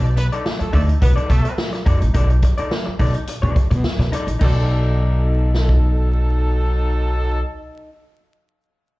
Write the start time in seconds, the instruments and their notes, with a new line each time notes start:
Already playing: upright bass B1
0.04 muted clean electric guitar stroke, closed hi-hat
0.16 horn section B3 B4, muted clean electric guitar stroke, closed hi-hat
0.32 clean electric guitar D#4 A4 D5, closed hi-hat
0.45 muted clean electric guitar stroke, snare
0.59 horn section A3 A4, muted clean electric guitar stroke, muted upright bass stroke, closed hi-hat
0.73 upright bass D2, horn section A3 A4, clean electric guitar D#4 A4 D5, open hi-hat
0.88 muted clean electric guitar stroke, closed hi-hat
1.01 upright bass B1, horn section B3 B4, muted clean electric guitar stroke, kick, closed hi-hat
1.16 clean electric guitar D#4 A4 D5, closed hi-hat
1.29 upright bass B2, horn section A3 A4, muted clean electric guitar stroke, kick, closed hi-hat
1.45 muted clean electric guitar stroke, closed hi-hat
1.58 snare
1.73 muted clean electric guitar stroke, snare, closed hi-hat
1.86 upright bass F#2, clean electric guitar D#4 A4 D5, kick, closed hi-hat
2.01 upright bass A1, muted clean electric guitar stroke, closed hi-hat
2.14 upright bass B1, clean electric guitar D#4 A4 D5, kick, closed hi-hat
2.30 muted clean electric guitar stroke, closed hi-hat
2.42 muted clean electric guitar stroke, kick, closed hi-hat
2.58 clean electric guitar D#4 A4 D5, muted upright bass stroke, closed hi-hat
2.71 muted clean electric guitar stroke, snare
2.86 muted clean electric guitar stroke, muted upright bass stroke
2.99 upright bass B1, clean electric guitar D#4 A4 D5, kick, open hi-hat
3.14 muted clean electric guitar stroke, closed hi-hat
3.27 muted clean electric guitar stroke, closed hi-hat
3.42 upright bass B2, clean electric guitar D#4 A4 D5, closed hi-hat
3.56 muted clean electric guitar stroke, kick, closed hi-hat
3.70 upright bass B2, muted clean electric guitar stroke, closed hi-hat
3.84 snare
3.99 upright bass B2, muted clean electric guitar stroke, snare, closed hi-hat
4.12 clean electric guitar D#4 A4 D5, closed hi-hat
4.27 upright bass A1, muted clean electric guitar stroke, closed hi-hat
4.39 upright bass B1, horn section F#3 D#4 A4, clean electric guitar D#4 A4, kick, crash
4.44 clean electric guitar D5
5.54 snare
5.69 kick